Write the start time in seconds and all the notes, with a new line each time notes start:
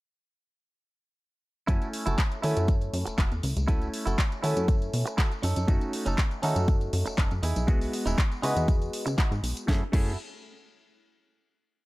1.67 F#2 A3 C#4 E4 F#4 A4 G#5, kick, closed hi-hat, tambourine
1.82 closed hi-hat, tambourine
1.93 open hi-hat
2.06 F#1 E4 F#4 A4, closed hi-hat, tambourine
2.18 kick, clap, closed hi-hat
2.31 muted clean electric guitar stroke, closed hi-hat, tambourine
2.42 D#3 A3 C#4 E4 F#4 A4 G#5, open hi-hat
2.57 F#2, closed hi-hat, tambourine
2.68 kick, closed hi-hat, tambourine
2.81 closed hi-hat, tambourine
2.93 F#2, open hi-hat
3.06 F#1, muted clean electric guitar stroke, closed hi-hat, tambourine
3.18 F#1 E4 F#4 A4, kick, clap, closed hi-hat
3.32 E2, closed hi-hat, tambourine
3.43 C#2, muted clean electric guitar stroke, open hi-hat
3.57 C#2, closed hi-hat, tambourine
3.68 A3 C#4 E4 F#4 A4 G#5, kick, closed hi-hat, tambourine
3.82 closed hi-hat, tambourine
3.94 open hi-hat
4.06 F#1 E4 F#4 A4, closed hi-hat, tambourine
4.18 kick, clap, closed hi-hat
4.31 muted clean electric guitar stroke, closed hi-hat, tambourine
4.43 D#3 A3 C#4 E4 F#4 A4 G#5, open hi-hat
4.57 F#2, closed hi-hat, tambourine
4.68 kick, closed hi-hat, tambourine
4.82 closed hi-hat, tambourine
4.93 B2, open hi-hat
5.06 muted clean electric guitar stroke, closed hi-hat, tambourine
5.17 E4 F#4 A4, kick, clap, closed hi-hat, tambourine
5.32 closed hi-hat, tambourine
5.42 F#2 C#4 D#4 A4, open hi-hat
5.56 F#2, closed hi-hat, tambourine
5.68 F#2 A3 C#4 D#4 F#4, kick, closed hi-hat, tambourine
5.81 closed hi-hat, tambourine
5.93 open hi-hat
6.06 F#1 C#4 D#4 A4, closed hi-hat, tambourine
6.18 kick, clap, closed hi-hat
6.31 muted clean electric guitar stroke, closed hi-hat, tambourine
6.42 D#3 A3 C#4 D#4 F#4 A4, open hi-hat
6.56 F#2, closed hi-hat, tambourine
6.68 kick, closed hi-hat, tambourine
6.81 closed hi-hat, tambourine
6.93 F#2, open hi-hat
7.06 F#1, muted clean electric guitar stroke, closed hi-hat, tambourine
7.18 F#1 C#4 D#4 A4, kick, clap, closed hi-hat
7.31 F#2, closed hi-hat, tambourine
7.43 E2 D#4 E4 G#4, open hi-hat
7.56 B1, closed hi-hat, tambourine
7.67 G#3 B3 F#4 D#5, kick, closed hi-hat, tambourine
7.81 open hi-hat, tambourine
7.93 open hi-hat
8.06 E1 D#4 E4 G#4, closed hi-hat, tambourine
8.18 kick, clap, closed hi-hat
8.31 muted clean electric guitar stroke, closed hi-hat, tambourine
8.42 C#3 G#3 B3 D#4 E4 F#4 B4 D#5, open hi-hat
8.56 E2, closed hi-hat, tambourine
8.68 kick, closed hi-hat, tambourine
8.82 closed hi-hat, tambourine
8.93 open hi-hat
9.06 C#3, muted clean electric guitar stroke, closed hi-hat, tambourine
9.18 D#4 E4 F#4, kick, clap, closed hi-hat
9.31 G#2, closed hi-hat, tambourine
9.43 B1, muted clean electric guitar stroke, open hi-hat
9.57 closed hi-hat, tambourine
9.67 F#2 A3 C#4 E4 F#4 G#4 A4, kick, snare
9.92 F#2 A3 C#4 E4 F#4 G#4 A4, kick, crash